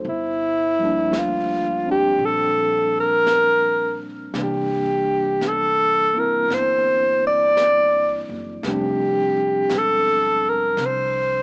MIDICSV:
0, 0, Header, 1, 5, 480
1, 0, Start_track
1, 0, Tempo, 1071429
1, 29, Time_signature, 4, 2, 24, 8
1, 5119, End_track
2, 0, Start_track
2, 0, Title_t, "Alto saxophone"
2, 0, Program_c, 0, 65
2, 41, Note_on_c, 0, 64, 75
2, 531, Note_on_c, 0, 65, 70
2, 538, Note_off_c, 0, 64, 0
2, 848, Note_off_c, 0, 65, 0
2, 856, Note_on_c, 0, 67, 78
2, 1010, Note_on_c, 0, 69, 70
2, 1017, Note_off_c, 0, 67, 0
2, 1327, Note_off_c, 0, 69, 0
2, 1343, Note_on_c, 0, 70, 98
2, 1792, Note_off_c, 0, 70, 0
2, 1986, Note_on_c, 0, 67, 69
2, 2455, Note_on_c, 0, 69, 80
2, 2461, Note_off_c, 0, 67, 0
2, 2775, Note_on_c, 0, 70, 76
2, 2781, Note_off_c, 0, 69, 0
2, 2928, Note_on_c, 0, 72, 69
2, 2935, Note_off_c, 0, 70, 0
2, 3246, Note_off_c, 0, 72, 0
2, 3256, Note_on_c, 0, 74, 102
2, 3709, Note_off_c, 0, 74, 0
2, 3886, Note_on_c, 0, 67, 68
2, 4383, Note_on_c, 0, 69, 77
2, 4389, Note_off_c, 0, 67, 0
2, 4700, Note_on_c, 0, 70, 77
2, 4707, Note_off_c, 0, 69, 0
2, 4863, Note_on_c, 0, 72, 75
2, 4870, Note_off_c, 0, 70, 0
2, 5119, Note_off_c, 0, 72, 0
2, 5119, End_track
3, 0, Start_track
3, 0, Title_t, "Tine electric piano"
3, 0, Program_c, 1, 4
3, 0, Control_c, 1, 64, 127
3, 0, Note_on_c, 1, 72, 47
3, 34, Control_c, 1, 64, 0
3, 105, Control_c, 1, 64, 127
3, 126, Note_off_c, 1, 72, 0
3, 355, Note_on_c, 1, 53, 46
3, 360, Note_on_c, 1, 55, 47
3, 370, Note_on_c, 1, 58, 44
3, 380, Note_on_c, 1, 62, 55
3, 834, Note_on_c, 1, 60, 43
3, 843, Note_off_c, 1, 62, 0
3, 848, Note_on_c, 1, 62, 49
3, 1944, Note_off_c, 1, 55, 0
3, 1947, Note_off_c, 1, 53, 0
3, 1947, Note_off_c, 1, 58, 0
3, 1948, Note_off_c, 1, 62, 0
3, 1950, Note_on_c, 1, 52, 48
3, 1950, Note_on_c, 1, 55, 42
3, 1951, Note_off_c, 1, 60, 0
3, 1953, Note_on_c, 1, 58, 43
3, 1953, Note_on_c, 1, 62, 49
3, 1954, Control_c, 1, 64, 0
3, 2037, Control_c, 1, 64, 127
3, 2744, Note_off_c, 1, 58, 0
3, 2750, Note_on_c, 1, 58, 42
3, 2761, Note_on_c, 1, 60, 37
3, 2766, Note_on_c, 1, 64, 47
3, 3865, Note_off_c, 1, 58, 0
3, 3869, Note_off_c, 1, 55, 0
3, 3870, Note_off_c, 1, 52, 0
3, 3871, Note_off_c, 1, 60, 0
3, 3871, Note_off_c, 1, 62, 0
3, 3874, Note_off_c, 1, 64, 0
3, 3875, Control_c, 1, 64, 0
3, 3883, Note_on_c, 1, 55, 51
3, 3885, Note_on_c, 1, 53, 45
3, 3886, Note_on_c, 1, 60, 45
3, 3892, Note_on_c, 1, 62, 55
3, 3952, Control_c, 1, 64, 127
3, 5119, Note_off_c, 1, 53, 0
3, 5119, Note_off_c, 1, 55, 0
3, 5119, Note_off_c, 1, 60, 0
3, 5119, Note_off_c, 1, 62, 0
3, 5119, End_track
4, 0, Start_track
4, 0, Title_t, "Upright bass"
4, 0, Program_c, 2, 32
4, 21, Note_on_c, 2, 31, 78
4, 487, Note_off_c, 2, 31, 0
4, 500, Note_on_c, 2, 38, 69
4, 966, Note_off_c, 2, 38, 0
4, 980, Note_on_c, 2, 34, 75
4, 1926, Note_off_c, 2, 34, 0
4, 1942, Note_on_c, 2, 36, 79
4, 2887, Note_off_c, 2, 36, 0
4, 2903, Note_on_c, 2, 31, 73
4, 3696, Note_off_c, 2, 31, 0
4, 3714, Note_on_c, 2, 30, 63
4, 3857, Note_off_c, 2, 30, 0
4, 3869, Note_on_c, 2, 29, 74
4, 4331, Note_off_c, 2, 29, 0
4, 4348, Note_on_c, 2, 28, 66
4, 4811, Note_off_c, 2, 28, 0
4, 4824, Note_on_c, 2, 36, 76
4, 5119, Note_off_c, 2, 36, 0
4, 5119, End_track
5, 0, Start_track
5, 0, Title_t, "Drums"
5, 23, Note_on_c, 9, 25, 42
5, 507, Note_off_c, 9, 25, 0
5, 507, Note_on_c, 9, 25, 30
5, 507, Note_on_c, 9, 38, 46
5, 507, Note_on_c, 9, 44, 56
5, 551, Note_off_c, 9, 38, 0
5, 551, Note_off_c, 9, 44, 0
5, 983, Note_off_c, 9, 25, 0
5, 983, Note_on_c, 9, 25, 35
5, 1462, Note_off_c, 9, 25, 0
5, 1462, Note_on_c, 9, 25, 32
5, 1462, Note_on_c, 9, 38, 47
5, 1462, Note_on_c, 9, 44, 45
5, 1507, Note_off_c, 9, 38, 0
5, 1507, Note_off_c, 9, 44, 0
5, 1944, Note_off_c, 9, 25, 0
5, 1944, Note_on_c, 9, 25, 40
5, 1944, Note_on_c, 9, 38, 29
5, 1988, Note_off_c, 9, 38, 0
5, 2425, Note_off_c, 9, 25, 0
5, 2425, Note_on_c, 9, 25, 30
5, 2425, Note_on_c, 9, 38, 46
5, 2425, Note_on_c, 9, 44, 49
5, 2470, Note_off_c, 9, 38, 0
5, 2470, Note_off_c, 9, 44, 0
5, 2913, Note_off_c, 9, 25, 0
5, 2913, Note_on_c, 9, 25, 35
5, 2913, Note_on_c, 9, 38, 31
5, 2958, Note_off_c, 9, 38, 0
5, 3390, Note_off_c, 9, 25, 0
5, 3390, Note_on_c, 9, 25, 33
5, 3390, Note_on_c, 9, 38, 46
5, 3390, Note_on_c, 9, 44, 55
5, 3435, Note_off_c, 9, 38, 0
5, 3435, Note_off_c, 9, 44, 0
5, 3867, Note_off_c, 9, 25, 0
5, 3867, Note_on_c, 9, 25, 36
5, 3867, Note_on_c, 9, 38, 31
5, 3912, Note_off_c, 9, 38, 0
5, 4344, Note_off_c, 9, 25, 0
5, 4344, Note_on_c, 9, 25, 35
5, 4344, Note_on_c, 9, 38, 45
5, 4344, Note_on_c, 9, 44, 49
5, 4388, Note_off_c, 9, 38, 0
5, 4388, Note_off_c, 9, 44, 0
5, 4826, Note_off_c, 9, 25, 0
5, 4826, Note_on_c, 9, 25, 36
5, 4826, Note_on_c, 9, 38, 31
5, 4871, Note_off_c, 9, 38, 0
5, 5119, Note_off_c, 9, 25, 0
5, 5119, End_track
0, 0, End_of_file